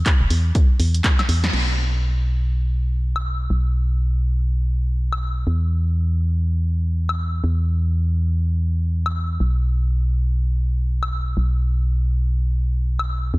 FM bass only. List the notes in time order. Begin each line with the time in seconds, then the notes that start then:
0.21 E1
0.31 E2
0.80 E2
1.29 E2
1.54 B1
3.50 B1
5.47 E2
7.44 E2
9.40 B1
11.37 B1
13.34 E2